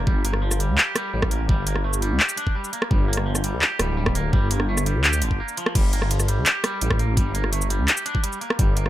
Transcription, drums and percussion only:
0.07 kick loud
0.25 closed hi-hat medium
0.33 cross-stick medium
0.51 cross-stick soft
0.51 shaker medium
0.60 closed hi-hat medium
0.78 clap loud
0.96 cross-stick medium
0.96 closed hi-hat medium
1.22 kick medium
1.22 cross-stick medium
1.31 closed hi-hat medium
1.49 kick loud
1.67 closed hi-hat medium
1.76 cross-stick medium
1.93 shaker medium
2.02 closed hi-hat medium
2.20 clap loud
2.29 shaker medium
2.37 closed hi-hat medium
2.47 kick medium
2.64 shaker soft
2.73 closed hi-hat medium
2.82 cross-stick medium
2.91 kick loud
3.13 closed hi-hat medium
3.17 cross-stick medium
3.35 cross-stick soft
3.35 shaker medium
3.44 closed hi-hat medium
3.62 clap loud
3.79 cross-stick medium
3.79 closed hi-hat medium
4.06 kick medium
4.06 cross-stick medium
4.15 closed hi-hat medium
4.33 kick loud
4.51 closed hi-hat medium
4.60 cross-stick medium
4.77 cross-stick soft
4.77 shaker medium
4.86 closed hi-hat medium
5.04 clap loud
5.04 closed hi-hat soft
5.13 shaker medium
5.22 closed hi-hat medium
5.31 kick medium
5.48 shaker soft
5.57 closed hi-hat medium
5.66 cross-stick medium
5.75 kick loud
5.75 closed hi-hat medium
5.75 crash loud
5.93 closed hi-hat medium
6.02 cross-stick medium
6.11 closed hi-hat medium
6.20 cross-stick soft
6.20 shaker medium
6.28 closed hi-hat medium
6.46 clap loud
6.46 closed hi-hat medium
6.64 cross-stick medium
6.64 closed hi-hat medium
6.81 closed hi-hat medium
6.91 kick medium
6.91 cross-stick medium
6.99 closed hi-hat soft
7.17 kick loud
7.17 closed hi-hat medium
7.35 closed hi-hat medium
7.44 cross-stick medium
7.53 closed hi-hat medium
7.62 shaker medium
7.70 closed hi-hat medium
7.88 clap loud
7.88 closed hi-hat medium
7.97 shaker medium
8.06 closed hi-hat medium
8.15 kick medium
8.24 closed hi-hat medium
8.33 shaker soft
8.41 closed hi-hat soft
8.50 cross-stick medium
8.59 kick loud
8.59 closed hi-hat medium
8.77 closed hi-hat medium
8.86 cross-stick medium

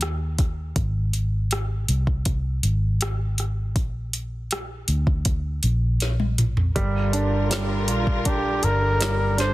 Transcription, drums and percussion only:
0.01 cross-stick medium
0.01 closed hi-hat medium
0.38 kick medium
0.38 cross-stick soft
0.38 closed hi-hat medium
0.76 kick medium
0.76 closed hi-hat medium
1.13 closed hi-hat medium
1.51 cross-stick medium
1.51 closed hi-hat medium
1.88 closed hi-hat medium
2.07 kick medium
2.25 kick medium
2.25 closed hi-hat medium
2.63 closed hi-hat medium
3.01 cross-stick loud
3.01 closed hi-hat medium
3.38 cross-stick soft
3.38 closed hi-hat medium
3.76 kick medium
3.76 closed hi-hat medium
4.13 closed hi-hat medium
4.51 cross-stick loud
4.51 closed hi-hat medium
4.88 closed hi-hat medium
5.07 kick medium
5.25 kick medium
5.25 closed hi-hat medium
5.63 closed hi-hat medium
6.00 snare soft
6.00 closed hi-hat medium
6.20 high tom medium
6.38 closed hi-hat medium
6.38 mid tom medium
6.57 floor tom medium
6.76 kick medium
6.76 closed hi-hat medium
7.13 closed hi-hat medium
7.51 snare loud
7.51 closed hi-hat medium
7.88 closed hi-hat medium
8.07 kick medium
8.25 kick medium
8.25 closed hi-hat medium
8.63 closed hi-hat medium
9.01 snare loud
9.01 closed hi-hat medium
9.38 snare soft
9.38 closed hi-hat medium

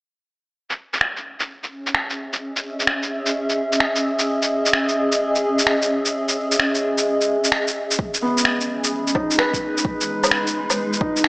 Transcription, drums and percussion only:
0.70 shaker soft
0.93 shaker medium
1.01 finger snap medium
1.17 shaker soft
1.40 shaker medium
1.63 shaker soft
1.86 shaker soft
1.95 finger snap medium
2.10 shaker soft
2.33 shaker medium
2.56 shaker soft
2.80 shaker medium
2.87 finger snap medium
3.03 shaker soft
3.26 shaker medium
3.49 shaker soft
3.73 shaker medium
3.80 finger snap medium
3.96 shaker soft
4.19 shaker medium
4.42 shaker soft
4.66 shaker medium
4.73 finger snap loud
4.89 shaker soft
5.12 shaker medium
5.35 shaker soft
5.59 shaker medium
5.67 finger snap medium
5.82 shaker soft
6.05 shaker medium
6.29 shaker soft
6.52 shaker medium
6.60 finger snap loud
6.75 shaker soft
6.98 shaker medium
7.21 shaker soft
7.44 shaker soft
7.52 finger snap medium
7.67 shaker soft
7.91 shaker medium
7.99 kick loud
8.14 shaker soft
8.38 shaker medium
8.45 finger snap medium
8.61 shaker soft
8.84 shaker soft
9.07 shaker soft
9.15 kick loud
9.15 low woodblock soft
9.31 shaker soft
9.39 finger snap loud
9.53 kick medium
9.53 shaker soft
9.77 shaker soft
9.85 kick loud
10.01 shaker soft
10.24 low woodblock medium
10.24 shaker soft
10.31 finger snap medium
10.47 shaker soft
10.70 low woodblock soft
10.70 shaker soft
10.93 shaker soft
11.01 kick loud
11.16 shaker soft
11.24 finger snap medium

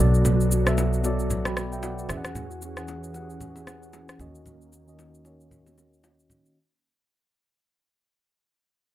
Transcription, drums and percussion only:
0.14 shaker soft
0.25 low conga medium
0.25 shaker medium
0.40 shaker medium
0.51 low bongo soft
0.51 shaker loud
0.67 cross-stick medium
0.67 shaker medium
0.78 high bongo medium
0.78 shaker medium
0.93 shaker medium
1.04 high bongo soft
1.04 shaker medium
1.19 shaker medium
1.30 low conga medium
1.30 shaker medium
1.45 cross-stick medium
1.45 low bongo medium
1.45 shaker medium
1.57 cross-stick medium
1.57 low bongo medium
1.57 shaker medium
1.72 shaker soft
1.83 high bongo medium
1.83 shaker medium
1.99 shaker medium
2.09 cross-stick medium
2.09 low conga medium
2.09 shaker medium
2.25 cross-stick medium
2.25 shaker medium
2.35 low conga medium
2.35 shaker medium
2.51 shaker medium
2.62 low bongo soft
2.62 shaker loud
2.77 cross-stick medium
2.77 shaker soft
2.88 high bongo medium
2.88 shaker medium
3.04 shaker medium
3.14 high bongo soft
3.14 shaker medium
3.30 shaker medium
3.40 low conga medium
3.40 shaker medium
3.56 low bongo medium
3.56 shaker medium
3.67 cross-stick medium
3.67 low bongo medium
3.67 shaker medium
3.83 shaker soft
3.93 high bongo medium
3.93 shaker medium
4.09 cross-stick medium
4.09 shaker medium
4.19 low conga medium
4.19 shaker medium
4.35 shaker soft
4.46 low conga medium
4.46 shaker medium
4.61 shaker soft
4.72 low bongo soft
4.72 shaker loud
4.88 shaker soft
4.99 high bongo medium
4.99 shaker medium
5.14 shaker medium
5.25 high bongo soft
5.25 shaker medium
5.41 shaker medium
5.51 low conga medium
5.51 shaker medium
5.66 low bongo medium
5.66 shaker medium
5.78 low bongo medium
5.78 shaker medium
5.93 shaker soft
6.04 high bongo medium
6.04 shaker medium
6.19 shaker medium
6.30 low conga medium
6.30 shaker medium
6.46 shaker soft

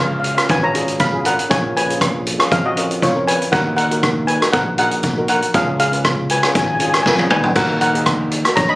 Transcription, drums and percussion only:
0.24 closed hi-hat medium
0.38 cross-stick medium
0.38 closed hi-hat medium
0.49 kick loud
0.49 closed hi-hat medium
0.75 closed hi-hat medium
0.88 closed hi-hat medium
0.99 kick medium
0.99 closed hi-hat medium
1.25 closed hi-hat medium
1.39 closed hi-hat medium
1.51 kick loud
1.51 closed hi-hat medium
1.77 closed hi-hat medium
1.90 closed hi-hat medium
2.01 kick medium
2.01 cross-stick medium
2.01 closed hi-hat medium
2.27 closed hi-hat medium
2.40 cross-stick medium
2.40 closed hi-hat medium
2.52 kick loud
2.52 closed hi-hat medium
2.77 closed hi-hat medium
2.91 closed hi-hat medium
3.02 kick medium
3.02 closed hi-hat medium
3.28 closed hi-hat loud
3.42 closed hi-hat medium
3.53 kick loud
3.53 closed hi-hat medium
3.78 closed hi-hat medium
3.91 closed hi-hat medium
4.03 kick medium
4.03 cross-stick medium
4.03 closed hi-hat medium
4.28 closed hi-hat medium
4.42 cross-stick medium
4.42 closed hi-hat medium
4.53 kick loud
4.53 closed hi-hat medium
4.78 closed hi-hat medium
4.91 closed hi-hat medium
5.03 kick medium
5.03 closed hi-hat medium
5.28 closed hi-hat medium
5.42 closed hi-hat medium
5.54 kick loud
5.54 closed hi-hat medium
5.79 closed hi-hat medium
5.93 closed hi-hat medium
6.05 kick medium
6.05 cross-stick medium
6.05 closed hi-hat medium
6.30 closed hi-hat medium
6.43 cross-stick medium
6.43 closed hi-hat medium
6.55 kick loud
6.55 closed hi-hat medium
6.80 closed hi-hat medium
6.94 cross-stick medium
6.94 closed hi-hat medium
7.06 kick medium
7.06 snare medium
7.19 high tom medium
7.30 mid tom loud
7.43 floor tom loud
7.55 kick loud
7.55 closed hi-hat medium
7.55 crash medium
7.81 closed hi-hat medium
7.95 closed hi-hat medium
8.06 kick medium
8.06 cross-stick medium
8.06 closed hi-hat medium
8.31 closed hi-hat medium
8.45 cross-stick medium
8.45 closed hi-hat medium
8.57 kick loud
8.57 closed hi-hat medium

